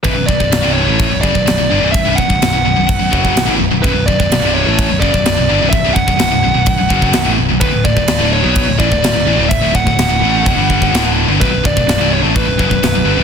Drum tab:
CC |x---x---x---x---|x---x---x---x---|x---x---x---x---|x---x---x---x---|
SD |----o-------o---|----o-------o---|----o-------o---|----o-------o---|
BD |o-oo----o-oo----|o-oo----o-oo----|o-oo----o-oo----|o-oo----o-oo----|

CC |x---x---x---x---|x---x---x---x---|x---x---x---x---|
SD |----o-------o---|----o-------o---|----o-------o---|
BD |o-oo----o-oo----|o-oo----o-oo----|o-oo----o-oo----|